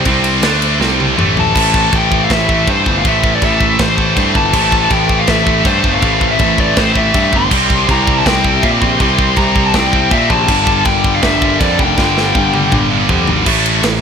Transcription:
Already playing: C5
0.05 C2 C3 G3 C4 D4, kick, ride
0.24 ride
0.41 D2 D3 A3 D4 E4 D5, snare, ride
0.62 ride
0.80 C2 C3 G3 C4 D4 C5, snare
1.00 high tom
1.16 A1 A2 E3 A3 E4 A4, mid tom
1.37 A5, floor tom
1.54 A1 A2 E3 A3 A4 C5, kick, crash, china
1.74 kick
1.93 A1 G5, kick, china
2.10 A2 E3 A3, kick
2.24 F5
2.29 A1 A2 E3 A3 E5, kick, snare, china
2.48 E3 A3, kick
2.52 A2
2.67 G2 A2 E3 C5, kick, china
2.71 A3
2.86 G1, kick
2.98 F5
3.04 A1 A2 E3 A3 E5, kick, china
3.24 kick
3.35 D5
3.42 A1 E5, kick, china
3.60 A2 E3 A3, kick
3.79 A1 A2 E3 A3 C5, kick, snare, china
3.97 A2 E3 A3, kick
4.14 G2 A2 E3 A3, kick, china
4.35 G1 A5, kick
4.52 A1 A2 E3 A3, kick, crash, china
4.72 kick
4.90 A1 G5, kick, china
5.08 A2 E3 A3, kick
5.19 F5
5.27 A1 A2 E3 A3 E5, kick, snare, china
5.45 A2 E3 A3, kick
5.63 G2 A2 E3 A3 C5, kick, china
5.84 G1, kick
5.93 F5
6.01 A1 A2 E3 A3, kick, china
6.21 kick
6.31 E5
6.39 A1, kick, china
6.58 A2 E3 A3 D5, kick
6.75 A1 A2 E3 A3 C5, kick, snare, china
6.94 A2 E3 A3 E5, kick
7.11 G2 A2 E3 A3, kick, china
7.33 G1 C6, kick
7.50 C2 C3 G3 C4 G4 D5 E5, kick, crash, china
7.70 kick
7.89 C2 A#5, kick, china
8.06 C3 G3 C4, kick
8.18 A5
8.25 C2 C3 G3 C4 G5, kick, snare, china
8.43 C3 G3 C4, kick
8.61 A#2 C3 G3 C4 E5, kick, china
8.81 A#1 C6, kick
8.99 C2 C3 G3 C4, kick, china
9.19 kick
9.36 C2 A#5, kick, china
9.55 C3 G3 C4, kick
9.65 A5
9.74 C2 C3 G3 C4 G5, kick, snare, china
9.93 C3 G3 C4, kick
10.11 A#2 C3 G3 E5, kick, china
10.15 C4
10.30 A#1 A5, kick
10.48 G1 G2 D3 G3 D4 A4 A#4, kick, crash, china
10.52 G3
10.67 kick
10.85 G1 G5, kick, china
11.04 G2 D3 G3, kick
11.14 F5
11.23 G1 G2 D3 G3 E5, kick, snare, china
11.41 G2 D3 G3, kick
11.60 F2 G2 D3 G3 D5, kick, china
11.79 F1 G5, kick
11.97 G1 G2 D3, kick, snare
12.01 G3
12.17 snare
12.35 G1, kick
12.53 G2 D3 G3, high tom
12.72 G1 G2 D3 G3, kick, mid tom
12.89 G2 D3 G3
13.07 F2 G2 D3 G3, kick, floor tom
13.28 G#1, floor tom
13.46 A1 A2 E3 A3, kick, crash
13.66 ride
13.83 A1 A2 E3, snare, ride

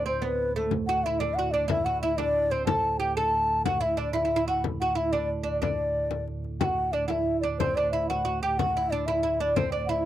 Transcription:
Already playing: D2 A2
0.06 C4 C5
0.22 B3 B4, frame drum
0.55 A3 A4, frame drum
0.71 frame drum
0.87 F#4 F#5, frame drum
1.04 E4 E5
1.20 D4 D5, frame drum
1.34 F#5
1.39 F#4
1.51 D4 D5, frame drum
1.68 E4 E5, frame drum
1.85 F#4 F#5, frame drum
2.02 E4 E5
2.17 D4 D5, frame drum
2.51 C4 C5
2.66 D2 A2 A4 A5, frame drum
2.85 frame drum
2.99 G4 G5
3.17 A4 A5, frame drum
3.50 frame drum
3.65 F#4 F#5, frame drum
3.81 E4 E5, frame drum
3.97 D4 D5
4.13 E4 E5, frame drum
4.25 E4
4.36 E4
4.48 F#4 F#5, frame drum
4.64 frame drum
4.81 F#4 F#5
4.95 E4 E5
5.12 D4 D5, frame drum
5.43 D4 D5, frame drum
5.62 D4 D5, frame drum
5.79 frame drum
6.11 frame drum
6.28 frame drum
6.44 frame drum
6.60 D2 A2 F#4 G5, frame drum
6.64 F#5
6.93 D4 D5
7.07 E4 E5 F#5, frame drum
7.26 frame drum
7.41 D4 D5, frame drum
7.58 C4 C5, frame drum
7.75 D4 D5
7.92 E4 E5
8.09 F#4 F#5, frame drum
8.25 F#4, frame drum
8.42 G4 G5, frame drum
8.58 F#4 F#5, frame drum
8.77 E4
8.90 D4 D5
9.06 E4 E5, frame drum
9.23 E4, frame drum
9.40 D4 D5, frame drum
9.56 C4 C5, frame drum
9.72 D4 D5, frame drum
9.86 E4 E5 F#5, frame drum

